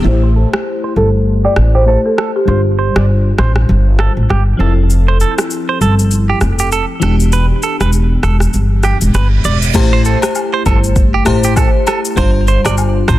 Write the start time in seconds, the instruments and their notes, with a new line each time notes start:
0.03 upright bass A1, fm electric piano A3 E4 G4
0.08 fm electric piano C5
0.23 clean electric guitar C5
0.36 clean electric guitar A4
0.54 cross-stick
0.84 clean electric guitar C5
0.96 upright bass G1, clean electric guitar A4, marimba A4
1.45 clean electric guitar G4, marimba D5
1.56 upright bass A1, cross-stick
1.75 clean electric guitar G4, marimba C5
1.86 fm electric piano A3 E4 G4 C5, clean electric guitar A4, marimba C5
2.06 marimba A4
2.18 clean electric guitar A4, cross-stick
2.36 marimba G4
2.45 upright bass G1, fm electric piano G3 D4 F4, marimba G4, clean electric guitar C5
2.50 fm electric piano C5
2.79 clean electric guitar C5
2.96 upright bass G1, clean electric guitar D5, cross-stick
3.38 upright bass A1, clean electric guitar C5, cross-stick
3.56 cross-stick
3.69 upright bass G1
3.99 clean electric guitar A4, cross-stick
4.17 upright bass A1
4.29 upright bass G1, clean electric guitar G4, cross-stick
4.57 upright bass F1, fm electric piano F3 C4 E4, clean electric guitar A4
4.62 fm electric piano A4
4.90 shaker
5.08 clean electric guitar C5
5.20 clean electric guitar A4, shaker
5.38 cross-stick, shaker
5.50 shaker
5.69 clean electric guitar C5
5.81 upright bass G1, clean electric guitar A4, shaker
5.99 shaker
6.11 shaker
6.30 clean electric guitar G4
6.41 upright bass F1, cross-stick, shaker
6.59 clean electric guitar G4, shaker
6.72 clean electric guitar A4, shaker
7.00 upright bass E1, fm electric piano E3 B3 D4, clean electric guitar A4, cross-stick, shaker
7.05 fm electric piano G4
7.20 shaker
7.32 clean electric guitar B4, shaker
7.63 clean electric guitar A4, shaker
7.80 upright bass E1, clean electric guitar B4, cross-stick, shaker
7.93 shaker
8.23 upright bass E1, clean electric guitar A4, cross-stick, shaker
8.40 cross-stick, shaker
8.53 upright bass G1, reverse cymbal, shaker
8.83 clean electric guitar G4, cross-stick, shaker
9.01 upright bass E1, shaker
9.14 upright bass G1, clean electric guitar B4, cross-stick, shaker
9.44 upright bass E1, clean electric guitar D5, shaker
9.62 shaker
9.74 upright bass A1, fm electric piano A3 E4 G4 C5, kick, crash, high agogo, shaker
9.93 clean electric guitar C5
10.05 clean electric guitar A4, shaker
10.22 cross-stick, high agogo, shaker
10.35 low woodblock, shaker
10.54 clean electric guitar C5
10.66 upright bass G1, clean electric guitar A4, kick, high agogo, shaker
10.84 shaker
10.96 kick, shaker
11.14 clean electric guitar G4
11.25 upright bass A1, fm electric piano A3 E4 G4 C5, cross-stick, high agogo, shaker
11.44 clean electric guitar G4, shaker
11.56 clean electric guitar A4, kick, cross-stick, low woodblock, shaker
11.87 clean electric guitar A4, cross-stick, high agogo, shaker
12.05 shaker
12.16 upright bass G1, fm electric piano G3 D4 F4 C5, clean electric guitar C5, kick, high agogo, shaker
12.47 clean electric guitar C5, shaker
12.65 upright bass G1, clean electric guitar D5, cross-stick, high agogo, shaker
12.77 low woodblock, shaker
13.08 upright bass A1, clean electric guitar C5, kick, cross-stick, high agogo, shaker